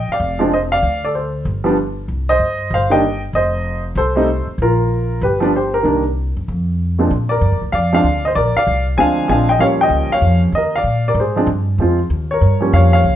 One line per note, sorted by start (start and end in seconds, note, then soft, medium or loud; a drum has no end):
0.00 0.11 G5 medium
0.08 0.39 F5 medium
0.08 muted upright bass stroke soft
0.13 0.40 D5 medium
0.20 0.79 F1 medium
0.39 0.50 F3 medium
0.39 0.50 G#3 medium
0.39 0.50 C4 medium
0.39 0.51 D4 medium
0.53 0.59 C5 medium
0.53 0.58 D#5 medium
0.72 1.01 D5 medium
0.72 1.04 F5 loud
0.82 1.42 D2 medium
1.05 1.14 A4 medium
1.05 1.14 D5 medium
1.15 1.44 A4 soft
1.15 1.44 C5 medium
1.45 2.05 G1 medium
1.64 1.75 F3 medium
1.64 1.75 G3 medium
1.64 1.75 B3 medium
1.64 1.76 D4 medium
2.08 2.37 C2 medium
2.29 2.69 C5 medium
2.29 2.73 D#5 loud
2.39 2.68 G2 medium
2.70 3.30 G1 medium
2.70 2.91 F5 medium
2.75 2.91 C5 medium
2.90 3.01 D#3 medium
2.90 3.01 G3 medium
2.90 3.01 A#3 medium
2.90 3.02 D4 medium
2.90 3.20 D#5 medium
2.90 3.20 G5 medium
3.33 3.93 F1 medium
3.33 3.82 C5 medium
3.33 3.82 D#5 medium
3.95 4.43 C2 medium
3.95 4.44 A4 medium
3.95 4.44 C5 medium
4.16 4.26 G3 medium
4.16 4.26 A3 medium
4.16 4.27 C4 medium
4.16 4.27 D#4 medium
4.47 muted upright bass stroke soft
4.58 5.18 A#1 medium
4.62 5.19 F4 medium
4.62 5.19 A#4 medium
5.21 5.81 G1 medium
5.21 5.52 G4 medium
5.21 5.51 B4 medium
5.40 5.51 F3 medium
5.40 5.51 G3 medium
5.40 5.52 B3 medium
5.40 5.52 D4 medium
5.56 5.73 G4 medium
5.56 5.75 C5 medium
5.74 6.02 G4 medium
5.74 6.02 A#4 medium
5.83 6.31 C2 medium
5.83 6.01 D#3 medium
5.83 6.02 G3 medium
5.83 6.02 A#3 medium
5.83 6.02 D4 medium
6.37 6.47 F#2 medium
6.48 7.07 F2 medium
6.99 7.09 A#2 medium
6.99 7.09 F3 medium
6.99 7.09 G#3 medium
6.99 7.09 C4 medium
6.99 7.09 D4 medium
7.10 7.40 A#2 medium
7.29 7.59 A#4 medium
7.29 7.58 D5 medium
7.41 7.53 G2 medium
7.52 7.61 F2 medium
7.62 7.71 D2 medium
7.72 8.03 F2 medium
7.72 7.92 D5 medium
7.72 7.92 F5 medium
7.92 8.03 F3 medium
7.92 8.03 G#3 medium
7.92 8.03 C4 medium
7.92 8.04 D4 medium
7.92 8.23 D5 medium
7.92 8.22 F5 medium
8.04 8.34 D2 medium
8.25 8.32 C5 medium
8.25 8.30 D#5 medium
8.35 8.53 A#1 medium
8.35 8.54 A#4 medium
8.35 8.53 D5 medium
8.56 8.86 D5 medium
8.56 8.85 F5 loud
8.56 muted upright bass stroke soft
8.67 8.97 C2 medium
8.97 9.28 D2 medium
8.97 9.26 F3 medium
8.97 9.27 G#3 medium
8.97 9.28 C4 medium
8.97 9.28 D4 medium
8.97 9.28 F5 medium
8.97 9.28 G#5 loud
9.28 9.59 A#1 medium
9.28 9.46 F3 medium
9.28 9.46 G#3 medium
9.28 9.47 C4 medium
9.28 9.47 D4 medium
9.28 9.48 F5 medium
9.28 9.49 G#5 medium
9.49 9.61 D#5 medium
9.49 9.61 G5 medium
9.59 9.89 D#2 medium
9.59 10.46 F3 medium
9.59 10.46 G3 medium
9.59 10.47 A#3 medium
9.59 10.47 C#4 medium
9.59 9.67 C#5 medium
9.59 9.65 F5 loud
9.81 10.11 D#5 medium
9.81 10.12 G5 loud
9.90 10.09 C#2 medium
10.10 10.41 F5 medium
10.10 muted upright bass stroke soft
10.14 10.42 C#5 medium
10.21 10.52 F2 medium
10.52 10.83 D#2 medium
10.52 10.75 D#5 medium
10.57 10.74 A#4 medium
10.76 11.05 D5 medium
10.76 11.07 F5 medium
10.84 11.14 A#2 medium
11.08 11.18 A#4 medium
11.08 11.18 D5 medium
11.14 11.46 G#2 medium
11.20 11.48 G#4 medium
11.20 11.47 C5 medium
11.36 11.46 F3 medium
11.36 11.47 G#3 medium
11.36 11.47 C4 medium
11.36 11.47 D4 medium
11.47 11.77 G2 medium
11.78 12.09 F2 medium
11.78 11.97 F3 medium
11.78 11.97 G#3 medium
11.78 11.98 C4 medium
11.82 11.98 F4 medium
12.10 12.40 D#2 medium
12.31 12.61 A#4 medium
12.31 12.59 C#5 medium
12.41 12.72 G2 medium
12.60 13.01 F3 medium
12.60 13.02 G3 medium
12.60 13.02 A#3 medium
12.60 13.02 C#4 medium
12.73 13.03 F2 medium
12.73 12.93 C#5 medium
12.73 12.91 F5 medium
12.93 13.16 C#5 medium
12.93 13.16 F5 medium
13.04 13.16 C#2 medium